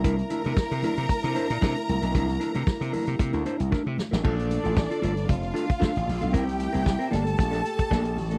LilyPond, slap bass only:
\new Staff \with { instrumentName = "Slap bass" } { \clef bass \time 4/4 \key c \mixolydian \tempo 4 = 114 c,8 r16 c16 r16 c16 r16 c16 r16 c16 r16 bes,16 c16 r16 c,16 b,,16 | c,8 r16 c16 r16 c16 r16 c16 c16 d,16 r16 c,16 r16 c16 r16 a,,16 | bes,,8. a,,8 r16 g,,8 f,,8 r8. a,,16 bes,,16 b,,16 | c,8. c,8 r16 g,,8 bes,,8 r8 bes,,8 a,,8 | }